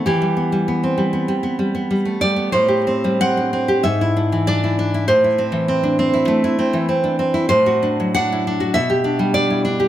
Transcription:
\new Staff \with { instrumentName = "Nylon-string guitar" } { \time 4/4 \key a \dorian \tempo 4 = 98 << { g'2. r8 d''8 | c''4 fis''4 e''4 d''4 | c''2. r4 | \key g \major c''4 fis''4 e''4 d''4 | } \\ { e16 g16 b16 g16 b16 c'16 g16 b16 g16 b16 g16 b16 g16 a16 g16 b16 | a,16 g'16 c'16 g16 c'16 d'16 c'16 g'16 gis,16 e'16 d'16 e16 d'16 e'16 d'16 e'16 | a,16 e'16 c'16 e16 c'16 d'16 c'16 e'16 a16 e'16 c'16 e16 c'16 d'16 c'16 e'16 | a,16 fis'16 d'16 fis16 d'16 e'16 d'16 fis'16 b,16 g'16 d'16 g16 d'16 e'16 d'16 g'16 | } >> }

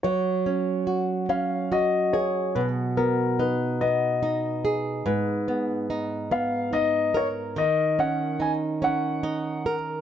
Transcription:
<<
  \new Staff \with { instrumentName = "Grand piano" } { \time 6/8 \key fis \major \tempo 4. = 48 cis''4. eis''8 dis''8 cis''8 | b'8 ais'8 b'8 dis''4 r8 | b'4. eis''8 dis''8 cis''8 | dis''8 fis''8 gis''8 fis''4 r8 | }
  \new Staff \with { instrumentName = "Nylon-string guitar" } { \time 6/8 \key fis \major fis8 cis'8 fis'8 cis'8 fis'8 gis'8 | b,8 b8 dis'8 b8 dis'8 gis'8 | gis,8 b8 dis'8 b8 dis'8 ais'8 | dis8 cis'8 dis'8 cis'8 dis'8 ais'8 | }
>>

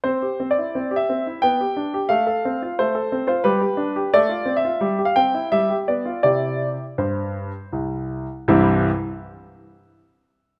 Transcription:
\new Staff \with { instrumentName = "Grand piano" } { \time 3/4 \key c \major \tempo 4 = 86 << { \tuplet 3/2 { c''4 d''8~ d''8 e''4 } g''4 | f''4 c''8. c''16 b'4 | \tuplet 3/2 { d''4 e''8~ e''8 f''16 g''8. } e''8 d''8 | d''4 c''4 r4 |
<c, g, e g c' e'>8 r2 r8 | } \\ { c'16 g'16 c'16 e'16 c'16 g'16 c'16 e'16 b16 g'16 d'16 g'16 | a16 a'16 c'16 f'16 a16 a'16 c'16 f'16 g16 g'16 d'16 g'16 | a16 f'16 c'16 f'16 g16 g'16 c'16 e'16 g16 g'16 b16 f'16 | <c e' g'>4 g,4 c,4 |
r2. | } >> }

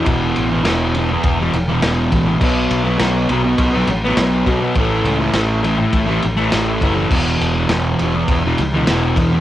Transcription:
<<
  \new Staff \with { instrumentName = "Distorted electric guitar" } { \clef bass \time 4/4 \key b \mixolydian \tempo 4 = 102 <e, b, e>8. <b, e>16 <e, b, e>8 <e, b, e>8. <b, e>8 <b, e>16 <e, b, e>8 <e, b, e>16 <b, e>16 | <b, fis b>8. <fis b>16 <b, fis b>8 <b, fis b>8. <fis b>8 <fis b>16 <b, fis b>8 <b, fis b>16 <fis b>16 | <a, e a>8. <e a>16 <a, e a>8 <a, e a>8. <e a>8 <e a>16 <a, e a>8 <a, e a>16 <e a>16 | <e, b, e>8. <b, e>16 <e, b, e>8 <e, b, e>8. <b, e>8 <b, e>16 <e, b, e>8 <e, b, e>16 <b, e>16 | }
  \new Staff \with { instrumentName = "Fingered electric bass" } { \clef bass \time 4/4 \key b \mixolydian e,,8 a,,8 e,,4 e,,8 e,,8 e,,8 a,,8 | b,,8 b,,8 b,,8 b,,8 b,,8 a,,8 b,,8 b,8 | a,,8 cis,8 a,,4 a,,8 a,,8 a,,8 fis,,8 | e,,8 e,,8 e,,8 e,,8 e,,8 cis,8 e,,8 e,8 | }
  \new DrumStaff \with { instrumentName = "Drums" } \drummode { \time 4/4 <bd cymr>8 cymr8 <cymr sn>8 cymr8 <bd cymr>8 cymr8 <cymr sn>8 <bd cymr>8 | <cymc bd>8 cymr8 <cymr sn>8 cymr8 <bd cymr>8 cymr8 <cymr sn>8 <bd cymr>8 | <bd cymr>8 cymr8 <cymr sn>8 cymr8 <bd cymr>8 cymr8 <cymr sn>8 <bd cymr>8 | <cymc bd>8 cymr8 <cymr sn>8 cymr8 <bd cymr>8 cymr8 <cymr sn>8 <bd cymr>8 | }
>>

